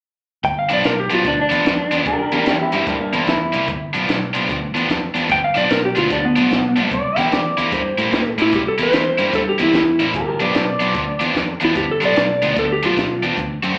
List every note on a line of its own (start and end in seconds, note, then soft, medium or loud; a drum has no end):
0.44 0.69 G1 medium
0.44 0.57 G5 medium
0.44 kick loud
0.44 closed hi-hat medium
0.59 0.71 F5 medium
0.69 0.84 B1 medium
0.69 0.92 G2 medium
0.69 0.92 F3 medium
0.69 0.92 B3 medium
0.69 0.92 D4 medium
0.69 closed hi-hat medium
0.73 0.85 D5 medium
0.84 1.10 B1 medium
0.84 0.98 A#4 medium
0.84 snare medium
0.84 closed hi-hat medium
1.00 1.12 G4 medium
1.10 1.25 B1 medium
1.10 1.33 G2 medium
1.10 1.33 F3 medium
1.10 1.33 B3 medium
1.10 1.32 D4 medium
1.10 closed hi-hat medium
1.14 1.26 F4 medium
1.25 1.50 D2 medium
1.25 1.39 D4 medium
1.25 kick loud
1.25 closed hi-hat medium
1.41 2.58 D4 medium
1.49 1.65 E2 medium
1.49 1.73 G2 medium
1.49 1.73 F3 medium
1.49 1.73 B3 medium
1.49 1.73 D4 medium
1.49 closed hi-hat medium
1.65 1.90 F2 medium
1.65 kick medium
1.65 snare medium
1.65 closed hi-hat medium
1.91 2.06 E2 medium
1.91 2.07 G2 medium
1.91 2.06 F3 medium
1.91 2.06 B3 medium
1.91 2.06 D4 medium
1.91 closed hi-hat medium
2.06 2.31 C2 medium
2.06 2.20 G4 medium
2.06 2.20 A#4 medium
2.06 kick loud
2.06 closed hi-hat medium
2.20 2.33 G4 medium
2.20 2.33 A#4 medium
2.31 2.46 E2 medium
2.31 2.55 C3 medium
2.31 2.55 G3 medium
2.31 2.55 A#3 medium
2.31 2.55 E4 medium
2.31 2.45 G4 medium
2.31 2.46 A#4 medium
2.31 closed hi-hat soft
2.46 2.72 E2 medium
2.46 2.60 E4 medium
2.46 2.60 G4 medium
2.46 snare medium
2.46 closed hi-hat medium
2.62 2.73 E4 medium
2.62 2.74 G4 medium
2.72 2.87 G2 medium
2.72 2.95 C3 medium
2.72 2.95 G3 medium
2.72 2.95 A#3 medium
2.72 2.95 E4 medium
2.72 2.87 E4 medium
2.72 2.88 G4 medium
2.72 closed hi-hat medium
2.87 3.12 G2 medium
2.87 2.99 A#3 medium
2.87 3.00 D4 medium
2.87 kick loud
2.87 closed hi-hat medium
3.00 3.13 A#3 medium
3.00 3.14 D4 medium
3.13 3.27 E2 medium
3.13 3.36 C3 medium
3.13 3.36 G3 medium
3.13 3.35 A#3 medium
3.13 3.27 A#3 medium
3.13 3.28 D4 medium
3.13 3.35 E4 medium
3.13 closed hi-hat medium
3.27 3.52 E2 medium
3.27 3.67 E4 loud
3.27 kick medium
3.27 snare medium
3.27 closed hi-hat medium
3.53 3.68 C2 medium
3.53 3.68 C3 medium
3.53 3.68 G3 medium
3.53 3.68 A#3 medium
3.53 3.68 E4 medium
3.53 closed hi-hat medium
3.68 3.93 G1 loud
3.68 kick loud
3.68 closed hi-hat medium
3.93 4.08 B1 medium
3.93 4.17 G2 medium
3.93 4.17 F3 medium
3.93 4.16 B3 medium
3.93 4.16 D4 medium
3.93 closed hi-hat medium
4.09 4.34 B1 medium
4.09 snare medium
4.09 closed hi-hat medium
4.33 4.49 B1 medium
4.33 4.57 G2 medium
4.33 4.57 F3 medium
4.33 4.56 B3 medium
4.33 4.56 D4 medium
4.33 closed hi-hat medium
4.49 4.74 D2 medium
4.49 kick loud
4.49 closed hi-hat medium
4.74 4.89 E2 medium
4.74 4.98 G2 medium
4.74 4.97 F3 medium
4.74 4.97 B3 medium
4.74 4.97 D4 medium
4.74 closed hi-hat medium
4.89 5.14 F2 medium
4.89 kick medium
4.89 snare loud
4.89 closed hi-hat medium
5.14 5.29 E2 medium
5.14 5.38 G2 medium
5.14 5.38 F3 medium
5.14 5.37 B3 medium
5.14 5.37 D4 medium
5.14 closed hi-hat medium
5.30 5.55 G1 medium
5.30 5.44 G5 medium
5.30 kick loud
5.30 closed hi-hat medium
5.44 5.57 F5 medium
5.55 5.70 B1 medium
5.55 5.78 G2 medium
5.55 5.78 F3 medium
5.55 5.78 B3 medium
5.55 5.77 D4 medium
5.55 5.70 D5 medium
5.55 snare soft
5.55 closed hi-hat medium
5.70 5.95 B1 medium
5.70 5.84 A#4 medium
5.70 snare medium
5.70 closed hi-hat medium
5.85 5.97 G4 medium
5.95 6.10 D2 medium
5.95 6.19 G2 medium
5.95 6.18 F3 medium
5.95 6.18 B3 medium
5.95 6.18 D4 medium
5.95 6.11 F4 medium
5.95 closed hi-hat medium
6.10 6.35 D2 medium
6.10 6.25 D4 medium
6.10 kick loud
6.10 closed hi-hat medium
6.25 6.90 B3 medium
6.36 6.50 B1 medium
6.36 6.59 G2 medium
6.36 6.59 F3 medium
6.36 6.59 B3 medium
6.36 6.58 D4 medium
6.36 closed hi-hat medium
6.51 6.76 B1 medium
6.51 kick medium
6.51 snare medium
6.51 closed hi-hat medium
6.76 6.91 B1 medium
6.76 6.92 G2 medium
6.76 6.91 F3 medium
6.76 6.91 B3 medium
6.76 6.91 D4 medium
6.76 closed hi-hat soft
6.91 7.16 C2 medium
6.91 7.18 D5 medium
6.91 kick loud
6.91 closed hi-hat medium
7.17 7.32 E2 medium
7.17 7.40 C3 medium
7.17 7.40 G3 medium
7.17 7.40 A#3 medium
7.17 7.39 E4 medium
7.17 7.32 G5 medium
7.17 snare soft
7.17 closed hi-hat medium
7.32 7.57 E2 medium
7.32 7.71 D5 medium
7.32 snare medium
7.32 closed hi-hat medium
7.57 7.72 E2 medium
7.57 7.80 C3 medium
7.57 7.80 G3 medium
7.57 7.80 A#3 medium
7.57 7.80 E4 medium
7.57 closed hi-hat medium
7.72 7.97 G2 medium
7.72 8.33 C5 medium
7.72 kick loud
7.72 closed hi-hat medium
7.98 8.12 A2 medium
7.98 8.21 C3 medium
7.98 8.21 G3 medium
7.98 8.21 A#3 medium
7.98 8.20 E4 medium
7.98 closed hi-hat medium
8.12 8.37 A#2 medium
8.12 kick medium
8.12 snare medium
8.12 closed hi-hat medium
8.38 8.52 A2 medium
8.38 8.61 C3 medium
8.38 8.61 G3 medium
8.38 8.61 A#3 medium
8.38 8.61 E4 medium
8.38 8.54 E4 medium
8.38 closed hi-hat medium
8.53 8.78 C2 medium
8.53 8.67 G4 medium
8.53 kick loud
8.53 closed hi-hat medium
8.68 8.80 A4 medium
8.78 8.93 E2 medium
8.78 9.01 C3 medium
8.78 9.01 G3 medium
8.78 9.01 A#3 medium
8.78 9.01 E4 loud
8.78 closed hi-hat medium
8.83 9.34 C5 medium
8.93 9.18 E2 medium
8.93 snare medium
8.93 closed hi-hat medium
9.18 9.33 G2 medium
9.18 9.41 C3 medium
9.18 9.42 G3 medium
9.18 9.41 A#3 medium
9.18 9.41 E4 medium
9.18 closed hi-hat medium
9.33 9.58 G2 medium
9.33 9.47 A4 medium
9.33 kick loud
9.33 closed hi-hat medium
9.49 9.61 G4 medium
9.58 9.73 E2 medium
9.58 9.82 C3 medium
9.58 9.81 G3 medium
9.58 9.82 A#3 medium
9.58 9.81 E4 medium
9.58 closed hi-hat medium
9.62 10.01 E4 medium
9.74 9.99 E2 medium
9.74 kick medium
9.74 snare medium
9.74 closed hi-hat medium
9.99 10.14 A1 medium
9.99 10.15 C3 medium
9.99 10.15 G3 medium
9.99 10.14 A#3 medium
9.99 10.14 E4 medium
9.99 closed hi-hat medium
10.14 10.39 G1 medium
10.14 10.27 G4 medium
10.14 10.27 A#4 medium
10.14 kick loud
10.14 closed hi-hat medium
10.28 10.40 G4 medium
10.28 10.41 A#4 medium
10.40 10.54 B1 medium
10.40 10.63 G2 medium
10.40 10.63 F3 medium
10.40 10.62 B3 medium
10.40 10.62 D4 medium
10.40 10.53 B4 medium
10.40 10.54 D5 medium
10.40 closed hi-hat medium
10.55 10.80 B1 medium
10.55 10.67 B4 medium
10.55 10.67 D5 medium
10.55 snare medium
10.55 closed hi-hat medium
10.68 11.54 D5 medium
10.80 10.95 B1 medium
10.80 11.03 G2 medium
10.80 11.03 F3 medium
10.80 11.03 B3 medium
10.80 11.02 D4 medium
10.80 closed hi-hat medium
10.95 11.20 D2 medium
10.95 kick loud
10.95 closed hi-hat medium
11.20 11.35 E2 medium
11.20 11.43 G2 medium
11.20 11.43 F3 medium
11.20 11.43 B3 medium
11.20 11.42 D4 medium
11.20 closed hi-hat medium
11.35 11.60 F2 medium
11.35 kick medium
11.35 snare medium
11.35 closed hi-hat medium
11.60 11.75 E2 medium
11.60 11.84 G2 medium
11.60 11.83 F3 medium
11.60 11.83 B3 medium
11.60 11.83 D4 medium
11.60 closed hi-hat medium
11.64 11.76 E4 medium
11.75 12.00 G1 medium
11.75 11.89 G4 medium
11.75 kick loud
11.75 closed hi-hat medium
11.91 12.03 A4 medium
12.01 12.16 B1 medium
12.01 12.24 G2 medium
12.01 12.24 F3 medium
12.01 12.24 B3 medium
12.01 12.23 D4 loud
12.01 closed hi-hat medium
12.05 12.56 D5 medium
12.16 12.41 B1 medium
12.16 snare loud
12.16 closed hi-hat medium
12.42 12.56 D2 medium
12.42 12.65 G2 medium
12.42 12.65 F3 medium
12.42 12.64 B3 medium
12.42 12.64 D4 medium
12.42 closed hi-hat medium
12.56 12.81 D2 medium
12.56 12.71 A4 medium
12.56 kick loud
12.56 closed hi-hat medium
12.72 12.84 G4 medium
12.83 12.96 B1 medium
12.83 13.05 G2 medium
12.83 13.05 F3 medium
12.83 13.05 B3 medium
12.83 13.05 D4 medium
12.83 13.23 F4 medium
12.83 closed hi-hat medium
12.97 13.21 B1 medium
12.97 kick medium
12.97 snare loud
12.97 closed hi-hat medium
13.23 13.37 E2 medium
13.23 13.38 G2 medium
13.23 13.37 F3 medium
13.23 13.37 B3 medium
13.23 13.37 D4 medium
13.23 closed hi-hat soft
13.37 13.62 D2 medium
13.37 kick medium
13.37 closed hi-hat medium
13.63 13.77 F#2 medium
13.63 13.78 D3 medium
13.63 13.78 A3 medium
13.63 13.78 C4 medium
13.63 13.78 F#4 loud
13.63 closed hi-hat medium